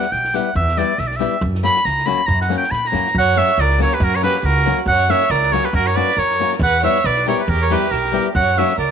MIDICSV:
0, 0, Header, 1, 6, 480
1, 0, Start_track
1, 0, Tempo, 433213
1, 616, Time_signature, 2, 2, 24, 8
1, 9873, End_track
2, 0, Start_track
2, 0, Title_t, "Oboe"
2, 0, Program_c, 0, 68
2, 0, Note_on_c, 0, 78, 100
2, 137, Note_on_c, 0, 79, 93
2, 154, Note_off_c, 0, 78, 0
2, 392, Note_on_c, 0, 78, 86
2, 408, Note_off_c, 0, 79, 0
2, 615, Note_off_c, 0, 78, 0
2, 622, Note_on_c, 0, 76, 97
2, 869, Note_on_c, 0, 74, 90
2, 885, Note_off_c, 0, 76, 0
2, 1102, Note_on_c, 0, 76, 73
2, 1119, Note_off_c, 0, 74, 0
2, 1192, Note_on_c, 0, 74, 59
2, 1208, Note_off_c, 0, 76, 0
2, 1289, Note_on_c, 0, 76, 84
2, 1306, Note_off_c, 0, 74, 0
2, 1586, Note_off_c, 0, 76, 0
2, 1825, Note_on_c, 0, 83, 116
2, 2055, Note_on_c, 0, 82, 101
2, 2072, Note_off_c, 0, 83, 0
2, 2285, Note_on_c, 0, 83, 102
2, 2302, Note_off_c, 0, 82, 0
2, 2509, Note_on_c, 0, 82, 113
2, 2526, Note_off_c, 0, 83, 0
2, 2672, Note_off_c, 0, 82, 0
2, 2679, Note_on_c, 0, 78, 84
2, 2828, Note_off_c, 0, 78, 0
2, 2853, Note_on_c, 0, 79, 90
2, 3001, Note_on_c, 0, 83, 95
2, 3017, Note_off_c, 0, 79, 0
2, 3184, Note_on_c, 0, 82, 87
2, 3201, Note_off_c, 0, 83, 0
2, 3490, Note_off_c, 0, 82, 0
2, 3526, Note_on_c, 0, 78, 127
2, 3742, Note_on_c, 0, 76, 114
2, 3758, Note_off_c, 0, 78, 0
2, 3996, Note_on_c, 0, 74, 99
2, 4013, Note_off_c, 0, 76, 0
2, 4215, Note_off_c, 0, 74, 0
2, 4233, Note_on_c, 0, 73, 96
2, 4363, Note_on_c, 0, 71, 76
2, 4380, Note_off_c, 0, 73, 0
2, 4479, Note_on_c, 0, 70, 109
2, 4495, Note_off_c, 0, 71, 0
2, 4599, Note_on_c, 0, 73, 83
2, 4616, Note_off_c, 0, 70, 0
2, 4685, Note_off_c, 0, 73, 0
2, 4692, Note_on_c, 0, 71, 115
2, 4850, Note_off_c, 0, 71, 0
2, 4850, Note_on_c, 0, 71, 63
2, 4933, Note_on_c, 0, 70, 97
2, 4950, Note_off_c, 0, 71, 0
2, 5296, Note_off_c, 0, 70, 0
2, 5409, Note_on_c, 0, 78, 118
2, 5655, Note_on_c, 0, 76, 105
2, 5672, Note_off_c, 0, 78, 0
2, 5885, Note_on_c, 0, 74, 104
2, 5902, Note_off_c, 0, 76, 0
2, 6118, Note_on_c, 0, 73, 100
2, 6135, Note_off_c, 0, 74, 0
2, 6259, Note_on_c, 0, 71, 66
2, 6276, Note_off_c, 0, 73, 0
2, 6360, Note_off_c, 0, 71, 0
2, 6374, Note_on_c, 0, 70, 107
2, 6501, Note_on_c, 0, 73, 85
2, 6518, Note_off_c, 0, 70, 0
2, 6609, Note_on_c, 0, 74, 108
2, 6625, Note_off_c, 0, 73, 0
2, 6862, Note_on_c, 0, 73, 100
2, 6878, Note_off_c, 0, 74, 0
2, 7224, Note_off_c, 0, 73, 0
2, 7349, Note_on_c, 0, 78, 116
2, 7559, Note_off_c, 0, 78, 0
2, 7586, Note_on_c, 0, 76, 101
2, 7824, Note_on_c, 0, 74, 101
2, 7840, Note_off_c, 0, 76, 0
2, 8054, Note_off_c, 0, 74, 0
2, 8073, Note_on_c, 0, 73, 81
2, 8173, Note_off_c, 0, 73, 0
2, 8173, Note_on_c, 0, 73, 58
2, 8194, Note_on_c, 0, 71, 59
2, 8211, Note_off_c, 0, 73, 0
2, 8305, Note_on_c, 0, 70, 99
2, 8321, Note_off_c, 0, 71, 0
2, 8444, Note_on_c, 0, 73, 85
2, 8461, Note_off_c, 0, 70, 0
2, 8549, Note_on_c, 0, 71, 88
2, 8566, Note_off_c, 0, 73, 0
2, 8765, Note_on_c, 0, 70, 85
2, 8782, Note_off_c, 0, 71, 0
2, 9142, Note_off_c, 0, 70, 0
2, 9257, Note_on_c, 0, 78, 115
2, 9505, Note_on_c, 0, 76, 99
2, 9522, Note_off_c, 0, 78, 0
2, 9732, Note_off_c, 0, 76, 0
2, 9739, Note_on_c, 0, 74, 81
2, 9873, Note_off_c, 0, 74, 0
2, 9873, End_track
3, 0, Start_track
3, 0, Title_t, "Violin"
3, 0, Program_c, 1, 40
3, 3528, Note_on_c, 1, 73, 98
3, 3764, Note_off_c, 1, 73, 0
3, 3764, Note_on_c, 1, 73, 88
3, 4002, Note_on_c, 1, 70, 78
3, 4018, Note_off_c, 1, 73, 0
3, 4213, Note_off_c, 1, 70, 0
3, 4220, Note_on_c, 1, 70, 75
3, 4345, Note_on_c, 1, 67, 54
3, 4362, Note_off_c, 1, 70, 0
3, 4454, Note_on_c, 1, 66, 83
3, 4470, Note_off_c, 1, 67, 0
3, 4612, Note_on_c, 1, 70, 84
3, 4628, Note_off_c, 1, 66, 0
3, 4696, Note_off_c, 1, 70, 0
3, 4724, Note_on_c, 1, 67, 78
3, 4862, Note_off_c, 1, 67, 0
3, 4862, Note_on_c, 1, 67, 55
3, 4928, Note_on_c, 1, 66, 81
3, 4945, Note_off_c, 1, 67, 0
3, 5294, Note_off_c, 1, 66, 0
3, 5408, Note_on_c, 1, 73, 98
3, 5631, Note_off_c, 1, 73, 0
3, 5631, Note_on_c, 1, 73, 107
3, 5878, Note_on_c, 1, 70, 87
3, 5895, Note_off_c, 1, 73, 0
3, 6125, Note_off_c, 1, 70, 0
3, 6125, Note_on_c, 1, 70, 73
3, 6244, Note_on_c, 1, 67, 53
3, 6260, Note_off_c, 1, 70, 0
3, 6344, Note_off_c, 1, 67, 0
3, 6351, Note_on_c, 1, 66, 83
3, 6483, Note_on_c, 1, 70, 84
3, 6499, Note_off_c, 1, 66, 0
3, 6589, Note_on_c, 1, 71, 88
3, 6605, Note_off_c, 1, 70, 0
3, 6833, Note_on_c, 1, 70, 74
3, 6850, Note_off_c, 1, 71, 0
3, 7210, Note_off_c, 1, 70, 0
3, 7325, Note_on_c, 1, 71, 94
3, 7547, Note_off_c, 1, 71, 0
3, 7556, Note_on_c, 1, 73, 90
3, 7817, Note_on_c, 1, 71, 80
3, 7834, Note_off_c, 1, 73, 0
3, 8051, Note_off_c, 1, 71, 0
3, 8059, Note_on_c, 1, 70, 67
3, 8152, Note_off_c, 1, 70, 0
3, 8152, Note_on_c, 1, 70, 42
3, 8172, Note_on_c, 1, 67, 61
3, 8189, Note_off_c, 1, 70, 0
3, 8296, Note_off_c, 1, 67, 0
3, 8296, Note_on_c, 1, 67, 90
3, 8441, Note_on_c, 1, 70, 74
3, 8458, Note_off_c, 1, 67, 0
3, 8539, Note_on_c, 1, 67, 80
3, 8555, Note_off_c, 1, 70, 0
3, 8772, Note_off_c, 1, 67, 0
3, 8772, Note_on_c, 1, 67, 66
3, 9146, Note_off_c, 1, 67, 0
3, 9250, Note_on_c, 1, 73, 85
3, 9484, Note_off_c, 1, 73, 0
3, 9484, Note_on_c, 1, 73, 87
3, 9716, Note_off_c, 1, 73, 0
3, 9723, Note_on_c, 1, 70, 66
3, 9873, Note_off_c, 1, 70, 0
3, 9873, End_track
4, 0, Start_track
4, 0, Title_t, "Nylon-string guitar"
4, 0, Program_c, 2, 24
4, 370, Note_on_c, 2, 55, 57
4, 376, Note_on_c, 2, 59, 62
4, 380, Note_on_c, 2, 64, 51
4, 386, Note_on_c, 2, 67, 64
4, 531, Note_off_c, 2, 55, 0
4, 532, Note_off_c, 2, 59, 0
4, 535, Note_off_c, 2, 64, 0
4, 538, Note_off_c, 2, 67, 0
4, 852, Note_on_c, 2, 55, 61
4, 860, Note_on_c, 2, 59, 56
4, 868, Note_on_c, 2, 64, 53
4, 874, Note_on_c, 2, 67, 61
4, 1010, Note_off_c, 2, 55, 0
4, 1014, Note_off_c, 2, 59, 0
4, 1018, Note_off_c, 2, 64, 0
4, 1021, Note_off_c, 2, 67, 0
4, 1320, Note_on_c, 2, 55, 50
4, 1327, Note_on_c, 2, 59, 58
4, 1333, Note_on_c, 2, 67, 66
4, 1334, Note_on_c, 2, 64, 54
4, 1482, Note_off_c, 2, 55, 0
4, 1487, Note_off_c, 2, 59, 0
4, 1488, Note_off_c, 2, 64, 0
4, 1489, Note_off_c, 2, 67, 0
4, 1807, Note_on_c, 2, 54, 64
4, 1809, Note_on_c, 2, 58, 56
4, 1820, Note_on_c, 2, 61, 53
4, 1825, Note_on_c, 2, 66, 69
4, 1965, Note_off_c, 2, 54, 0
4, 1965, Note_off_c, 2, 58, 0
4, 1971, Note_off_c, 2, 61, 0
4, 1973, Note_off_c, 2, 66, 0
4, 2279, Note_on_c, 2, 54, 65
4, 2284, Note_on_c, 2, 58, 60
4, 2294, Note_on_c, 2, 61, 51
4, 2299, Note_on_c, 2, 66, 63
4, 2439, Note_off_c, 2, 54, 0
4, 2441, Note_off_c, 2, 58, 0
4, 2446, Note_off_c, 2, 61, 0
4, 2448, Note_off_c, 2, 66, 0
4, 2751, Note_on_c, 2, 54, 60
4, 2765, Note_on_c, 2, 58, 63
4, 2770, Note_on_c, 2, 61, 60
4, 2777, Note_on_c, 2, 66, 63
4, 2913, Note_off_c, 2, 54, 0
4, 2920, Note_off_c, 2, 58, 0
4, 2923, Note_off_c, 2, 61, 0
4, 2926, Note_off_c, 2, 66, 0
4, 3233, Note_on_c, 2, 54, 63
4, 3244, Note_on_c, 2, 58, 59
4, 3249, Note_on_c, 2, 61, 48
4, 3259, Note_on_c, 2, 66, 64
4, 3393, Note_off_c, 2, 54, 0
4, 3398, Note_off_c, 2, 58, 0
4, 3401, Note_off_c, 2, 61, 0
4, 3406, Note_off_c, 2, 66, 0
4, 3715, Note_on_c, 2, 54, 60
4, 3725, Note_on_c, 2, 58, 50
4, 3730, Note_on_c, 2, 61, 50
4, 3735, Note_on_c, 2, 66, 66
4, 3873, Note_off_c, 2, 54, 0
4, 3878, Note_off_c, 2, 58, 0
4, 3881, Note_off_c, 2, 61, 0
4, 3882, Note_off_c, 2, 66, 0
4, 4194, Note_on_c, 2, 54, 63
4, 4206, Note_on_c, 2, 58, 64
4, 4211, Note_on_c, 2, 61, 53
4, 4212, Note_on_c, 2, 66, 58
4, 4352, Note_off_c, 2, 54, 0
4, 4358, Note_off_c, 2, 58, 0
4, 4360, Note_off_c, 2, 61, 0
4, 4360, Note_off_c, 2, 66, 0
4, 4675, Note_on_c, 2, 54, 62
4, 4684, Note_on_c, 2, 58, 57
4, 4690, Note_on_c, 2, 61, 66
4, 4692, Note_on_c, 2, 66, 71
4, 4832, Note_off_c, 2, 54, 0
4, 4837, Note_off_c, 2, 58, 0
4, 4840, Note_off_c, 2, 61, 0
4, 4840, Note_off_c, 2, 66, 0
4, 5155, Note_on_c, 2, 54, 59
4, 5165, Note_on_c, 2, 58, 47
4, 5171, Note_on_c, 2, 61, 66
4, 5176, Note_on_c, 2, 66, 62
4, 5312, Note_off_c, 2, 54, 0
4, 5317, Note_off_c, 2, 58, 0
4, 5320, Note_off_c, 2, 61, 0
4, 5321, Note_off_c, 2, 66, 0
4, 5633, Note_on_c, 2, 54, 61
4, 5641, Note_on_c, 2, 58, 60
4, 5646, Note_on_c, 2, 61, 51
4, 5652, Note_on_c, 2, 66, 73
4, 5791, Note_off_c, 2, 54, 0
4, 5795, Note_off_c, 2, 58, 0
4, 5797, Note_off_c, 2, 61, 0
4, 5800, Note_off_c, 2, 66, 0
4, 6114, Note_on_c, 2, 54, 64
4, 6123, Note_on_c, 2, 58, 57
4, 6128, Note_on_c, 2, 61, 56
4, 6135, Note_on_c, 2, 66, 64
4, 6272, Note_off_c, 2, 54, 0
4, 6277, Note_off_c, 2, 58, 0
4, 6280, Note_off_c, 2, 61, 0
4, 6282, Note_off_c, 2, 66, 0
4, 6596, Note_on_c, 2, 54, 63
4, 6605, Note_on_c, 2, 58, 62
4, 6612, Note_on_c, 2, 61, 48
4, 6616, Note_on_c, 2, 66, 66
4, 6754, Note_off_c, 2, 54, 0
4, 6759, Note_off_c, 2, 58, 0
4, 6762, Note_off_c, 2, 61, 0
4, 6763, Note_off_c, 2, 66, 0
4, 7085, Note_on_c, 2, 54, 56
4, 7092, Note_on_c, 2, 58, 47
4, 7097, Note_on_c, 2, 61, 50
4, 7107, Note_on_c, 2, 66, 64
4, 7241, Note_off_c, 2, 54, 0
4, 7241, Note_off_c, 2, 58, 0
4, 7246, Note_off_c, 2, 61, 0
4, 7251, Note_off_c, 2, 66, 0
4, 7565, Note_on_c, 2, 55, 62
4, 7567, Note_on_c, 2, 59, 61
4, 7575, Note_on_c, 2, 64, 62
4, 7580, Note_on_c, 2, 67, 55
4, 7721, Note_off_c, 2, 55, 0
4, 7724, Note_off_c, 2, 59, 0
4, 7725, Note_off_c, 2, 64, 0
4, 7726, Note_off_c, 2, 67, 0
4, 8048, Note_on_c, 2, 55, 71
4, 8051, Note_on_c, 2, 59, 55
4, 8062, Note_on_c, 2, 64, 60
4, 8068, Note_on_c, 2, 67, 66
4, 8204, Note_off_c, 2, 55, 0
4, 8205, Note_off_c, 2, 59, 0
4, 8211, Note_off_c, 2, 64, 0
4, 8214, Note_off_c, 2, 67, 0
4, 8532, Note_on_c, 2, 55, 69
4, 8538, Note_on_c, 2, 59, 50
4, 8545, Note_on_c, 2, 64, 51
4, 8547, Note_on_c, 2, 67, 65
4, 8688, Note_off_c, 2, 55, 0
4, 8690, Note_off_c, 2, 59, 0
4, 8694, Note_off_c, 2, 67, 0
4, 8695, Note_off_c, 2, 64, 0
4, 8992, Note_on_c, 2, 55, 68
4, 9001, Note_on_c, 2, 59, 60
4, 9009, Note_on_c, 2, 64, 59
4, 9015, Note_on_c, 2, 67, 69
4, 9160, Note_off_c, 2, 55, 0
4, 9164, Note_off_c, 2, 59, 0
4, 9168, Note_off_c, 2, 64, 0
4, 9171, Note_off_c, 2, 67, 0
4, 9507, Note_on_c, 2, 54, 74
4, 9511, Note_on_c, 2, 58, 59
4, 9518, Note_on_c, 2, 66, 72
4, 9523, Note_on_c, 2, 61, 54
4, 9659, Note_off_c, 2, 54, 0
4, 9661, Note_off_c, 2, 58, 0
4, 9665, Note_off_c, 2, 66, 0
4, 9667, Note_off_c, 2, 61, 0
4, 9873, End_track
5, 0, Start_track
5, 0, Title_t, "Upright bass"
5, 0, Program_c, 3, 32
5, 133, Note_on_c, 3, 35, 65
5, 421, Note_off_c, 3, 35, 0
5, 614, Note_on_c, 3, 40, 108
5, 901, Note_off_c, 3, 40, 0
5, 1089, Note_on_c, 3, 35, 86
5, 1376, Note_off_c, 3, 35, 0
5, 1566, Note_on_c, 3, 42, 120
5, 1853, Note_off_c, 3, 42, 0
5, 2052, Note_on_c, 3, 37, 78
5, 2336, Note_off_c, 3, 37, 0
5, 2526, Note_on_c, 3, 42, 104
5, 2812, Note_off_c, 3, 42, 0
5, 3006, Note_on_c, 3, 46, 73
5, 3218, Note_off_c, 3, 46, 0
5, 3246, Note_on_c, 3, 42, 81
5, 3458, Note_off_c, 3, 42, 0
5, 3485, Note_on_c, 3, 42, 110
5, 3769, Note_off_c, 3, 42, 0
5, 3962, Note_on_c, 3, 37, 98
5, 4247, Note_off_c, 3, 37, 0
5, 4433, Note_on_c, 3, 42, 121
5, 4721, Note_off_c, 3, 42, 0
5, 4907, Note_on_c, 3, 37, 98
5, 5197, Note_off_c, 3, 37, 0
5, 5382, Note_on_c, 3, 42, 118
5, 5673, Note_off_c, 3, 42, 0
5, 5869, Note_on_c, 3, 37, 98
5, 6159, Note_off_c, 3, 37, 0
5, 6351, Note_on_c, 3, 42, 118
5, 6641, Note_off_c, 3, 42, 0
5, 6833, Note_on_c, 3, 42, 89
5, 7123, Note_off_c, 3, 42, 0
5, 7307, Note_on_c, 3, 40, 127
5, 7600, Note_off_c, 3, 40, 0
5, 7803, Note_on_c, 3, 35, 93
5, 8093, Note_off_c, 3, 35, 0
5, 8285, Note_on_c, 3, 40, 124
5, 8575, Note_off_c, 3, 40, 0
5, 8768, Note_on_c, 3, 35, 76
5, 9058, Note_off_c, 3, 35, 0
5, 9250, Note_on_c, 3, 42, 118
5, 9541, Note_off_c, 3, 42, 0
5, 9726, Note_on_c, 3, 37, 77
5, 9873, Note_off_c, 3, 37, 0
5, 9873, End_track
6, 0, Start_track
6, 0, Title_t, "Drums"
6, 23, Note_on_c, 9, 38, 35
6, 132, Note_off_c, 9, 38, 0
6, 132, Note_on_c, 9, 38, 32
6, 242, Note_off_c, 9, 38, 0
6, 271, Note_on_c, 9, 38, 33
6, 379, Note_off_c, 9, 38, 0
6, 379, Note_on_c, 9, 38, 27
6, 489, Note_off_c, 9, 38, 0
6, 621, Note_on_c, 9, 36, 98
6, 732, Note_off_c, 9, 36, 0
6, 757, Note_on_c, 9, 38, 30
6, 852, Note_off_c, 9, 38, 0
6, 852, Note_on_c, 9, 38, 30
6, 963, Note_off_c, 9, 38, 0
6, 1092, Note_on_c, 9, 38, 31
6, 1203, Note_off_c, 9, 38, 0
6, 1232, Note_on_c, 9, 38, 32
6, 1334, Note_off_c, 9, 38, 0
6, 1334, Note_on_c, 9, 38, 27
6, 1445, Note_off_c, 9, 38, 0
6, 1577, Note_on_c, 9, 36, 100
6, 1688, Note_off_c, 9, 36, 0
6, 1715, Note_on_c, 9, 38, 33
6, 1815, Note_off_c, 9, 38, 0
6, 1815, Note_on_c, 9, 38, 34
6, 1926, Note_off_c, 9, 38, 0
6, 1949, Note_on_c, 9, 38, 31
6, 2052, Note_off_c, 9, 38, 0
6, 2052, Note_on_c, 9, 38, 31
6, 2162, Note_off_c, 9, 38, 0
6, 2196, Note_on_c, 9, 38, 29
6, 2303, Note_off_c, 9, 38, 0
6, 2303, Note_on_c, 9, 38, 23
6, 2414, Note_off_c, 9, 38, 0
6, 2537, Note_on_c, 9, 36, 96
6, 2648, Note_off_c, 9, 36, 0
6, 2670, Note_on_c, 9, 38, 27
6, 2780, Note_off_c, 9, 38, 0
6, 2780, Note_on_c, 9, 38, 28
6, 2891, Note_off_c, 9, 38, 0
6, 2917, Note_on_c, 9, 38, 28
6, 3022, Note_off_c, 9, 38, 0
6, 3022, Note_on_c, 9, 38, 26
6, 3133, Note_off_c, 9, 38, 0
6, 3153, Note_on_c, 9, 38, 27
6, 3263, Note_off_c, 9, 38, 0
6, 3263, Note_on_c, 9, 38, 26
6, 3373, Note_off_c, 9, 38, 0
6, 3397, Note_on_c, 9, 38, 37
6, 3496, Note_on_c, 9, 36, 87
6, 3507, Note_off_c, 9, 38, 0
6, 3606, Note_off_c, 9, 36, 0
6, 3736, Note_on_c, 9, 38, 31
6, 3847, Note_off_c, 9, 38, 0
6, 3858, Note_on_c, 9, 38, 29
6, 3968, Note_off_c, 9, 38, 0
6, 3968, Note_on_c, 9, 38, 25
6, 4079, Note_off_c, 9, 38, 0
6, 4100, Note_on_c, 9, 38, 29
6, 4211, Note_off_c, 9, 38, 0
6, 4214, Note_on_c, 9, 38, 29
6, 4324, Note_off_c, 9, 38, 0
6, 4449, Note_on_c, 9, 36, 106
6, 4559, Note_off_c, 9, 36, 0
6, 4692, Note_on_c, 9, 38, 28
6, 4803, Note_off_c, 9, 38, 0
6, 4825, Note_on_c, 9, 38, 30
6, 4929, Note_off_c, 9, 38, 0
6, 4929, Note_on_c, 9, 38, 29
6, 5040, Note_off_c, 9, 38, 0
6, 5065, Note_on_c, 9, 38, 31
6, 5172, Note_off_c, 9, 38, 0
6, 5172, Note_on_c, 9, 38, 26
6, 5282, Note_off_c, 9, 38, 0
6, 5402, Note_on_c, 9, 36, 108
6, 5513, Note_off_c, 9, 36, 0
6, 5648, Note_on_c, 9, 38, 35
6, 5759, Note_off_c, 9, 38, 0
6, 5778, Note_on_c, 9, 38, 32
6, 5884, Note_off_c, 9, 38, 0
6, 5884, Note_on_c, 9, 38, 31
6, 5995, Note_off_c, 9, 38, 0
6, 6009, Note_on_c, 9, 38, 29
6, 6120, Note_off_c, 9, 38, 0
6, 6135, Note_on_c, 9, 38, 26
6, 6246, Note_off_c, 9, 38, 0
6, 6364, Note_on_c, 9, 36, 81
6, 6475, Note_off_c, 9, 36, 0
6, 6504, Note_on_c, 9, 38, 30
6, 6597, Note_off_c, 9, 38, 0
6, 6597, Note_on_c, 9, 38, 28
6, 6708, Note_off_c, 9, 38, 0
6, 6755, Note_on_c, 9, 38, 27
6, 6848, Note_off_c, 9, 38, 0
6, 6848, Note_on_c, 9, 38, 28
6, 6959, Note_off_c, 9, 38, 0
6, 6993, Note_on_c, 9, 38, 28
6, 7096, Note_off_c, 9, 38, 0
6, 7096, Note_on_c, 9, 38, 26
6, 7206, Note_off_c, 9, 38, 0
6, 7226, Note_on_c, 9, 38, 26
6, 7331, Note_on_c, 9, 36, 97
6, 7337, Note_off_c, 9, 38, 0
6, 7441, Note_off_c, 9, 36, 0
6, 7572, Note_on_c, 9, 38, 27
6, 7683, Note_off_c, 9, 38, 0
6, 7706, Note_on_c, 9, 38, 29
6, 7803, Note_off_c, 9, 38, 0
6, 7803, Note_on_c, 9, 38, 24
6, 7914, Note_off_c, 9, 38, 0
6, 7933, Note_on_c, 9, 38, 23
6, 8044, Note_off_c, 9, 38, 0
6, 8049, Note_on_c, 9, 38, 24
6, 8160, Note_off_c, 9, 38, 0
6, 8298, Note_on_c, 9, 36, 76
6, 8409, Note_off_c, 9, 36, 0
6, 8555, Note_on_c, 9, 38, 26
6, 8665, Note_off_c, 9, 38, 0
6, 8685, Note_on_c, 9, 38, 24
6, 8784, Note_off_c, 9, 38, 0
6, 8784, Note_on_c, 9, 38, 26
6, 8895, Note_off_c, 9, 38, 0
6, 8921, Note_on_c, 9, 38, 26
6, 9020, Note_off_c, 9, 38, 0
6, 9020, Note_on_c, 9, 38, 23
6, 9131, Note_off_c, 9, 38, 0
6, 9264, Note_on_c, 9, 36, 97
6, 9375, Note_off_c, 9, 36, 0
6, 9490, Note_on_c, 9, 38, 31
6, 9601, Note_off_c, 9, 38, 0
6, 9626, Note_on_c, 9, 38, 31
6, 9731, Note_off_c, 9, 38, 0
6, 9731, Note_on_c, 9, 38, 24
6, 9842, Note_off_c, 9, 38, 0
6, 9873, End_track
0, 0, End_of_file